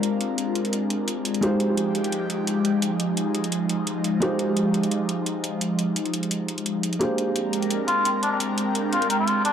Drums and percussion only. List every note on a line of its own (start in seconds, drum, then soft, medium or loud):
0.03 closed hi-hat medium
0.21 closed hi-hat medium
0.38 closed hi-hat medium
0.55 closed hi-hat medium
0.65 closed hi-hat soft
0.73 closed hi-hat medium
0.90 closed hi-hat medium
1.08 closed hi-hat medium
1.25 closed hi-hat medium
1.34 closed hi-hat soft
1.43 closed hi-hat medium
1.60 closed hi-hat medium
1.77 closed hi-hat medium
1.95 closed hi-hat medium
2.04 closed hi-hat soft
2.12 closed hi-hat medium
2.30 closed hi-hat medium
2.47 closed hi-hat medium
2.65 closed hi-hat medium
2.82 closed hi-hat medium
3.00 closed hi-hat medium
3.17 closed hi-hat medium
3.35 closed hi-hat medium
3.44 closed hi-hat soft
3.52 closed hi-hat medium
3.69 closed hi-hat medium
3.87 closed hi-hat medium
4.04 closed hi-hat medium
4.22 closed hi-hat medium
4.39 closed hi-hat medium
4.57 closed hi-hat medium
4.74 closed hi-hat medium
4.83 closed hi-hat soft
4.91 closed hi-hat medium
5.09 closed hi-hat medium
5.26 closed hi-hat medium
5.44 closed hi-hat medium
5.61 closed hi-hat medium
5.79 closed hi-hat medium
5.96 closed hi-hat medium
6.06 closed hi-hat soft
6.14 closed hi-hat medium
6.23 closed hi-hat soft
6.31 closed hi-hat medium
6.48 closed hi-hat medium
6.58 closed hi-hat soft
6.66 closed hi-hat medium
6.83 closed hi-hat medium
6.93 closed hi-hat soft
7.01 closed hi-hat medium
7.18 closed hi-hat medium
7.36 closed hi-hat medium
7.53 closed hi-hat medium
7.62 closed hi-hat soft
7.70 closed hi-hat medium
7.88 closed hi-hat medium
8.05 closed hi-hat medium
8.23 closed hi-hat medium
8.40 closed hi-hat medium
8.58 closed hi-hat medium
8.75 closed hi-hat medium
8.93 closed hi-hat medium
9.02 closed hi-hat soft
9.10 closed hi-hat medium
9.28 closed hi-hat medium
9.45 closed hi-hat medium